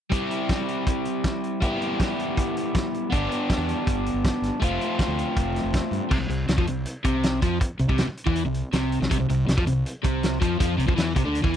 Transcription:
0.10 G3 C4 E4 G4, kick, closed hi-hat
0.31 closed hi-hat
0.49 kick, snare, closed hi-hat
0.68 closed hi-hat
0.87 kick, closed hi-hat
1.05 closed hi-hat
1.24 kick, snare, closed hi-hat
1.44 closed hi-hat
1.61 G3 B3 E4 G4, kick, closed hi-hat
1.82 closed hi-hat
2.00 kick, snare, closed hi-hat
2.19 closed hi-hat
2.37 kick, closed hi-hat
2.57 closed hi-hat
2.75 kick, snare, closed hi-hat
2.94 closed hi-hat
3.11 G1 B3 D4 G4, kick, closed hi-hat
3.31 closed hi-hat
3.50 kick, snare, closed hi-hat
3.58 E2
3.69 closed hi-hat
3.87 G1, kick, closed hi-hat
4.06 closed hi-hat
4.14 G1
4.24 kick, snare, closed hi-hat
4.42 G1, snare, closed hi-hat
4.60 F1 A3 C4 F4, kick, closed hi-hat
4.81 closed hi-hat
4.99 kick, snare, closed hi-hat
5.08 D2
5.18 closed hi-hat
5.37 F1, kick, closed hi-hat
5.56 snare, closed hi-hat
5.64 F1
5.74 kick, snare, closed hi-hat
5.91 G2, closed hi-hat
6.11 C2 C3, kick, crash
6.20 C2 C3
6.29 C2 C3, closed hi-hat
6.48 C2 C3, snare, closed hi-hat
6.58 F2 F3, kick
6.67 C2 C3, closed hi-hat
6.85 closed hi-hat
7.04 C2 C3, kick, closed hi-hat
7.23 snare, closed hi-hat
7.42 F2 F3, kick, closed hi-hat
7.61 muted fingered electric bass stroke, muted overdriven electric guitar stroke, kick, closed hi-hat
7.79 C2 C3, closed hi-hat
7.89 C2 C3, kick
7.98 snare, closed hi-hat
8.07 muted fingered electric bass stroke, muted overdriven electric guitar stroke
8.17 closed hi-hat
8.26 E2 E3, kick
8.35 closed hi-hat
8.45 C2 C3
8.54 closed hi-hat
8.73 C2 C3, snare, closed hi-hat
8.92 closed hi-hat
9.01 C2 C3, snare
9.11 C2 C3, kick, closed hi-hat
9.20 C2 C3
9.29 C2 C3, closed hi-hat
9.47 C2 C3, snare, closed hi-hat
9.57 F2 F3, kick
9.67 C2 C3, closed hi-hat
9.86 closed hi-hat
10.03 C2 C3, kick, closed hi-hat
10.23 snare, closed hi-hat
10.40 F2 F3, kick, closed hi-hat
10.60 F2 F3, kick, closed hi-hat
10.78 C2 C3, closed hi-hat
10.87 F2 F3, kick
10.96 E2 E3, snare, closed hi-hat
11.15 C2 C3, kick, closed hi-hat
11.24 D2 D3
11.35 closed hi-hat
11.43 E2 E3, kick

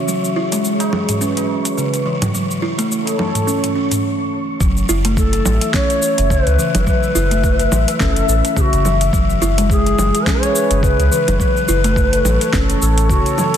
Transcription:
Already playing: F#3 C#4 F#4 C#5 E5
0.08 F#3, cabasa
0.24 G#4, cabasa
0.36 E4
0.52 G#3, closed hi-hat, tabla tin, cabasa
0.65 cabasa
0.80 closed hi-hat, tabla na, cabasa
0.93 E3, low conga
1.04 B4
1.09 closed hi-hat, tabla ge, cabasa
1.21 C#4, cabasa
1.37 closed hi-hat, tabla na, cabasa
1.65 closed hi-hat, cabasa
1.77 C#3, cabasa
1.94 closed hi-hat, cabasa
2.05 E3, tabla tin
2.21 closed hi-hat, tabla ge, low conga, cabasa
2.34 F#3, cabasa
2.51 cabasa
2.62 E4, tabla na
2.78 A3, closed hi-hat, tabla tin, cabasa
2.88 A4 C#5, cabasa
3.06 closed hi-hat, tabla na, cabasa
3.19 E3, low conga
3.34 closed hi-hat, tabla ge, cabasa
3.47 C#4, cabasa
3.63 closed hi-hat, tabla ge, cabasa
3.75 C#4
3.91 closed hi-hat, tabla tin, tabla ge, cabasa
4.60 F#1 F#3, kick, cabasa
4.77 cabasa
4.89 F#1 E4, cabasa
5.05 A3, closed hi-hat, cabasa
5.17 A4, kick, cabasa
5.33 closed hi-hat, cabasa
5.41 E5
5.46 A1 E3, low conga, cabasa
5.61 closed hi-hat, cabasa
5.74 C#4 C#5, kick, snare, cabasa
5.90 closed hi-hat, cabasa
6.02 cabasa
6.18 F#1, closed hi-hat, cabasa
6.30 C#3 B4, kick, cabasa
6.47 C#2, closed hi-hat, cabasa
6.59 E3, cabasa
6.75 F#1, closed hi-hat, low conga, cabasa
6.87 F#3 B4, kick, cabasa
7.03 cabasa
7.15 F#1 E4, cabasa
7.31 A3, closed hi-hat, cabasa
7.44 kick, cabasa
7.60 closed hi-hat, cabasa
7.72 A1 E3, low conga, cabasa
7.88 closed hi-hat, cabasa
8.00 F#1 C#4 A4, kick, snare, cabasa
8.16 closed hi-hat, cabasa
8.28 A1 A4, cabasa
8.45 closed hi-hat, cabasa
8.56 C#3 G#4, kick, cabasa
8.61 F#4
8.73 F#1, closed hi-hat, cabasa
8.85 E3, low conga, cabasa
9.01 closed hi-hat, cabasa
9.13 F#1 F#3, kick, cabasa
9.30 cabasa
9.41 F#1 E4, cabasa
9.58 G#3, closed hi-hat, cabasa
9.70 G#4, kick, cabasa
9.86 closed hi-hat, cabasa
9.93 G#4
9.98 F#1 E3, low conga, cabasa
10.09 B4
10.15 closed hi-hat, cabasa
10.26 C#4 C#5, kick, snare, cabasa
10.43 closed hi-hat, cabasa
10.56 cabasa
10.71 F#1, closed hi-hat, cabasa
10.83 C#3 B4, kick, cabasa
10.99 C#2, closed hi-hat, cabasa
11.12 E3, cabasa
11.28 F#1, closed hi-hat, low conga, cabasa
11.40 F#3 B4, kick, cabasa
11.57 cabasa
11.67 F#1 E4 A4, cabasa
11.84 A3, closed hi-hat, cabasa
11.96 C#5, kick, cabasa
12.13 closed hi-hat, cabasa
12.25 A1 E3, low conga, cabasa
12.41 closed hi-hat, cabasa
12.53 F#1 C#4 A4, kick, snare, cabasa
12.70 closed hi-hat, cabasa
12.81 A1 A4, cabasa
12.98 closed hi-hat, cabasa
13.09 E1 C#3 F#4, kick, cabasa
13.26 closed hi-hat, cabasa
13.38 E3, low conga, cabasa

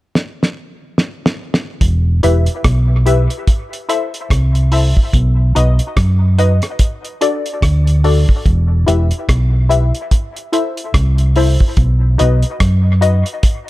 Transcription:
0.15 snare
0.43 snare
0.98 snare
1.26 snare
1.54 snare
1.81 E1, kick, closed hi-hat
2.23 E1 E4 G4 B4 E5, closed hi-hat
2.46 closed hi-hat
2.64 B1, kick, cross-stick, closed hi-hat
3.06 E4 G4 B4 E5, closed hi-hat
3.30 closed hi-hat
3.47 kick, closed hi-hat
3.73 closed hi-hat
3.89 E4 A4 C5 E5, closed hi-hat
4.14 closed hi-hat
4.30 C2, kick, cross-stick, closed hi-hat
4.55 closed hi-hat
4.72 E4 A4 C5 E5, open hi-hat
4.97 kick
5.13 B1, kick, closed hi-hat
5.55 B1 D#4 F#4 B4 D#5, closed hi-hat
5.79 closed hi-hat
5.97 F#2, kick, cross-stick, closed hi-hat
6.38 D#4 F#4 B4 D#5, closed hi-hat
6.62 cross-stick, closed hi-hat
6.79 kick, closed hi-hat
7.05 closed hi-hat
7.21 D4 F#4 A4 D5, closed hi-hat
7.46 closed hi-hat
7.62 D2, kick, cross-stick, closed hi-hat
7.87 closed hi-hat
8.04 D4 F#4 A4 D5, open hi-hat
8.29 kick
8.46 E1, kick, closed hi-hat
8.86 E1 E4 G4 B4 E5, closed hi-hat
9.11 closed hi-hat
9.29 B1, kick, cross-stick, closed hi-hat
9.69 E4 G4 B4 E5, closed hi-hat
9.95 closed hi-hat
10.11 kick, closed hi-hat
10.36 closed hi-hat
10.53 E4 A4 C5 E5, closed hi-hat
10.77 closed hi-hat
10.94 C2, kick, cross-stick, closed hi-hat
11.18 closed hi-hat
11.36 E4 A4 C5 E5, open hi-hat
11.60 kick
11.77 B1, kick, closed hi-hat
12.18 B1 D#4 F#4 B4 D#5, closed hi-hat
12.43 closed hi-hat
12.60 F#2, kick, cross-stick, closed hi-hat
13.01 D#4 F#4 B4 D#5, closed hi-hat
13.26 closed hi-hat
13.43 kick, closed hi-hat

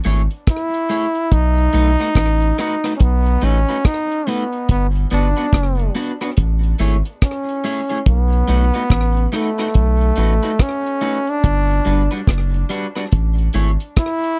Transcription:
0.04 G#1 A3 E4 G#4 C#5, closed hi-hat
0.31 closed hi-hat
0.47 E4, kick, cross-stick, closed hi-hat
0.74 closed hi-hat
0.89 A3 E4 G#4 C#5, closed hi-hat
1.15 closed hi-hat
1.31 B1 D#4, kick, closed hi-hat
1.58 closed hi-hat
1.73 B1 A3 D#4 F#4 B4, closed hi-hat
1.99 A3 D#4 F#4 B4, closed hi-hat
2.15 A1, kick, cross-stick, closed hi-hat
2.42 closed hi-hat
2.58 A3 D#4 F#4 B4, cross-stick, closed hi-hat
2.84 A3 D#4 F#4 B4, cross-stick, closed hi-hat
2.97 B1 C#4, kick, closed hi-hat
3.02 B3
3.26 closed hi-hat
3.41 A1 A3 C#4 D#4 F#4 B4, closed hi-hat
3.68 A3 D#4 F#4 B4, closed hi-hat
3.85 D#4, kick, cross-stick, closed hi-hat
4.12 closed hi-hat
4.27 A3 B3 D#4 F#4 B4, closed hi-hat
4.53 closed hi-hat
4.69 G1 B3, kick, closed hi-hat
4.95 closed hi-hat
5.10 G1 B3 D4 F#4 B4, closed hi-hat
5.36 B3 D4 F#4 B4, closed hi-hat
5.53 F#1, kick, cross-stick, closed hi-hat
5.79 closed hi-hat
5.95 B3 D4 F#4 B4, closed hi-hat
6.21 B3 D4 F#4 B4, cross-stick, closed hi-hat
6.37 A1, kick, closed hi-hat
6.63 closed hi-hat
6.78 G#1 A3 E4 G#4 C#5, closed hi-hat
7.05 closed hi-hat
7.22 C#4, kick, cross-stick, closed hi-hat
7.49 closed hi-hat
7.64 A3 E4 G#4 C#5, open hi-hat
7.89 A3 E4 G#4 C#5, closed hi-hat
8.06 B1 B3, kick, closed hi-hat
8.32 closed hi-hat
8.48 B1 A3 D#4 F#4 B4, closed hi-hat
8.73 A3 D#4 F#4 B4, closed hi-hat
8.90 A1, kick, cross-stick, closed hi-hat
9.17 closed hi-hat
9.32 A3 D#4 F#4 B4, cross-stick, closed hi-hat
9.58 A3 D#4 F#4 B4, cross-stick, closed hi-hat
9.74 B1, kick, closed hi-hat
10.01 closed hi-hat
10.16 A1 A3 D#4 F#4 B4, closed hi-hat
10.43 A3 D#4 F#4 B4, closed hi-hat
10.59 C#4, kick, cross-stick, closed hi-hat
10.86 closed hi-hat
11.01 A3 D#4 F#4 B4, closed hi-hat
11.27 D4, closed hi-hat
11.44 G1, kick, closed hi-hat
11.70 closed hi-hat
11.85 G1 G3 D4 F#4 B4, closed hi-hat
12.11 G3 D4 F#4 B4, closed hi-hat
12.27 F#1, kick, cross-stick, closed hi-hat
12.54 closed hi-hat
12.70 G3 D4 F#4 B4, closed hi-hat
12.96 G3 D4 F#4 B4, cross-stick, closed hi-hat
13.12 A1, kick, closed hi-hat
13.38 closed hi-hat
13.53 G#1 A3 E4 G#4 C#5, closed hi-hat
13.80 closed hi-hat
13.96 E4, kick, cross-stick, closed hi-hat
14.24 closed hi-hat

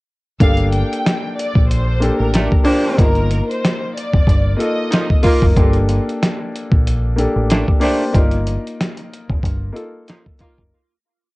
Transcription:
0.40 G1 A#3 D4 G4 A4 F5, kick, closed hi-hat
0.57 closed hi-hat
0.72 G5, closed hi-hat
0.93 closed hi-hat
1.06 snare, closed hi-hat
1.38 D5, closed hi-hat
1.55 A#1, kick
1.71 C5, closed hi-hat
2.00 A#3 D4 G4 A4, closed hi-hat
2.19 A1 A#4
2.34 A#2 A3 D4, snare, closed hi-hat
2.52 kick
2.63 A#2 F3 A#3 D4 G4 C5, open hi-hat
2.96 G1 A#3 D#4 F4 A#4, kick, closed hi-hat
3.15 closed hi-hat
3.31 closed hi-hat
3.50 C5, closed hi-hat
3.65 snare, closed hi-hat
3.95 D5, closed hi-hat
4.13 F1, kick
4.27 G1, kick, closed hi-hat
4.57 A#3 D#4 F4 A4 D#5, closed hi-hat
4.91 A#2 F3 D#4, snare, closed hi-hat
5.10 kick
5.23 A#3 D#4 F4 A#4, kick, open hi-hat
5.42 F#1, kick
5.56 G1 A#3 D4 G4 A4, kick, closed hi-hat
5.73 closed hi-hat
5.89 closed hi-hat
6.09 closed hi-hat
6.23 snare, closed hi-hat
6.56 closed hi-hat
6.72 A#1, kick
6.87 closed hi-hat
7.16 A#3 D4 G4 A4, closed hi-hat
7.36 A1
7.50 A#2 A3 D4, snare, closed hi-hat
7.68 kick
7.80 A#2 A3 A#3 D4 G4 C5, open hi-hat
8.12 G1 A#3 D#4 F4 A#4, kick, closed hi-hat
8.31 closed hi-hat
8.47 closed hi-hat
8.67 closed hi-hat
8.81 snare, closed hi-hat
8.97 closed hi-hat
9.14 closed hi-hat
9.30 F1, kick
9.43 G1, kick, closed hi-hat
9.73 A#3 D#4 F4 A4, closed hi-hat
10.08 A#2 F3 D#4, snare, closed hi-hat
10.26 kick
10.39 A#3 D#4 F4 A#4, kick, closed hi-hat
10.58 F#1, kick

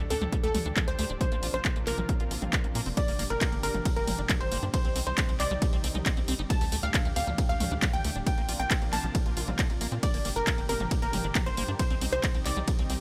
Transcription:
Already playing: A2 D3 G3 D4 G4
0.10 D2 C4 A4, open hi-hat
0.21 D2 G3, closed hi-hat, mid tom
0.32 G3, kick, closed hi-hat
0.43 D2 A3 A4, closed hi-hat
0.55 D2 A3, open hi-hat, mid tom
0.66 D2 D4, closed hi-hat
0.77 A3, kick, clap, closed hi-hat, mid tom
0.88 D2 A3 C5, closed hi-hat
0.99 D2 A3, open hi-hat
1.10 D1 D4, closed hi-hat
1.21 C3 F3 A#3 F4 C5, kick, closed hi-hat
1.32 A#1 A#3, closed hi-hat
1.43 A#1 F4, open hi-hat
1.54 A#1 C4 C5, closed hi-hat
1.65 F4, kick, clap, closed hi-hat
1.76 A#1 A#3, closed hi-hat
1.87 A#1 A#3 A#4, clap, open hi-hat
1.98 A#1 F3, closed hi-hat, mid tom
2.09 F3, kick, closed hi-hat
2.20 A#1 F4, closed hi-hat
2.31 A#1 F4, open hi-hat
2.42 A#1 C4, closed hi-hat, mid tom
2.53 F4, kick, clap, closed hi-hat
2.64 A#1 A#3, closed hi-hat
2.75 A#2 A#3, open hi-hat
2.86 F1 C4, open hi-hat
2.97 A#2 D3 G3 D4 G4 D5, kick, closed hi-hat, ride
3.08 G1 A#3, open hi-hat
3.19 G1 A#3, open hi-hat
3.30 G1 D4 A#4, closed hi-hat
3.41 A#3, kick, clap, closed hi-hat, ride
3.52 G1 A#3, closed hi-hat
3.63 G1 C4 A#4, open hi-hat
3.74 G1 G3, closed hi-hat, mid tom
3.85 G3, kick, closed hi-hat, ride
3.96 G1 A#3 A#4, closed hi-hat
4.07 G1 A#3, open hi-hat, mid tom
4.18 G1 D4, closed hi-hat
4.30 A#3, kick, clap, closed hi-hat, mid tom, ride
4.40 G1 A#3 C5, closed hi-hat
4.52 G1 A#3, open hi-hat
4.63 G2 D4, closed hi-hat
4.74 C3 D#3 G3 D#4 C5, kick, closed hi-hat, ride
4.85 C2 C4, closed hi-hat
4.96 C2 C4, open hi-hat
5.07 C2 D#4 C5, closed hi-hat
5.18 C4, kick, clap, closed hi-hat, ride
5.29 C2 C4, closed hi-hat
5.40 C2 C4 D5, clap, open hi-hat
5.51 C2 G3, closed hi-hat
5.62 G3, kick, closed hi-hat, ride
5.73 C2 C4, closed hi-hat
5.84 C2 C4, open hi-hat
5.95 C2 D#4, closed hi-hat, mid tom
6.06 C4, kick, clap, closed hi-hat, ride
6.17 C2 C4, closed hi-hat
6.28 C2 C4, open hi-hat
6.39 G1 D#4, closed hi-hat
6.50 A2 D3 G3 D4 G4 A5, kick, closed hi-hat, ride
6.61 D2 A3, open hi-hat
6.72 D2 A3, open hi-hat
6.83 D2 D4 F5, closed hi-hat
6.94 A3, kick, clap, closed hi-hat, ride
7.05 D2 A3, closed hi-hat
7.16 D2 C4 F5, open hi-hat
7.27 D2 G3, closed hi-hat, mid tom
7.38 G3, kick, closed hi-hat, ride
7.49 D2 A3 F5, closed hi-hat
7.60 D2 A3, open hi-hat, mid tom
7.71 D2 D4, closed hi-hat
7.82 A3, kick, clap, closed hi-hat, mid tom, ride
7.93 D2 A3 G5, closed hi-hat
8.04 D2 A3, open hi-hat
8.15 D1 D4, closed hi-hat
8.26 C3 F3 A#3 F4 G5, kick, closed hi-hat, ride
8.37 A#1 A#3, closed hi-hat
8.48 A#1 F4, open hi-hat
8.59 A#1 C4 G5, closed hi-hat
8.71 F4, kick, clap, closed hi-hat, ride
8.82 A#1 A#3, closed hi-hat
8.93 A#1 A#3 A5, clap, open hi-hat
9.04 A#1 F3, closed hi-hat
9.15 F3, kick, closed hi-hat, ride
9.26 A#1 F4, closed hi-hat
9.37 A#1 F4, open hi-hat
9.48 A#1 C4, closed hi-hat, mid tom
9.59 F4, kick, clap, closed hi-hat, ride
9.70 A#1 A#3, closed hi-hat
9.81 A#1 A#3, open hi-hat
9.92 A#2 C4, closed hi-hat
10.03 A#2 D3 G3 G4 D5, kick, closed hi-hat, ride
10.14 G1 A#3, open hi-hat
10.25 G1 A#3, open hi-hat
10.36 G1 D4 A#4, closed hi-hat
10.47 A#3, kick, clap, closed hi-hat, ride
10.58 G1 A#3, closed hi-hat
10.69 G1 C4 A#4, open hi-hat
10.80 G1 G3, closed hi-hat, mid tom
10.91 G3, kick, closed hi-hat, ride
11.02 G1 A#3 A#4, closed hi-hat
11.13 G1 A#3, open hi-hat, mid tom
11.24 G1 D4, closed hi-hat
11.35 A#3, kick, clap, closed hi-hat, mid tom, ride
11.46 G1 A#3 C5, closed hi-hat
11.57 G1 A#3, open hi-hat
11.68 G2 D4, closed hi-hat
11.79 C3 D#3 G3 D#4 G4 C5, kick, closed hi-hat, ride
11.90 C2 C4, closed hi-hat
12.01 C2 C4, open hi-hat
12.12 C2 D#4 C5, closed hi-hat
12.24 C4, kick, clap, closed hi-hat, ride
12.35 C2 C4, closed hi-hat
12.46 C2 C4 D5, clap, open hi-hat
12.57 C2 G3, closed hi-hat
12.68 G3, kick, closed hi-hat, ride
12.79 C2 C4, closed hi-hat
12.90 C2 C4, open hi-hat

